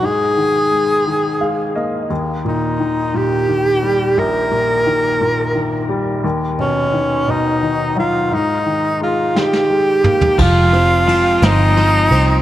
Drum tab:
CC |------------|------------|------------|------------|
RD |------------|------------|------------|------------|
SD |------------|------------|------------|------------|
T2 |------------|------------|------------|------------|
FT |------------|------------|------------|------------|
BD |------------|------------|------------|------------|

CC |------------|x-----------|
RD |------------|--x-x-x-x-x-|
SD |------oo----|------o-----|
T2 |----------o-|------------|
FT |-----------o|------------|
BD |------------|o-----------|